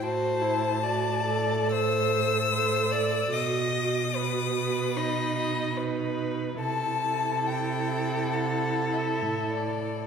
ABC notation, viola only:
X:1
M:4/4
L:1/8
Q:1/4=73
K:Ador
V:1 name="Viola"
F E F A3 A2 | F2 F2 ^D2 D2 | E8 |]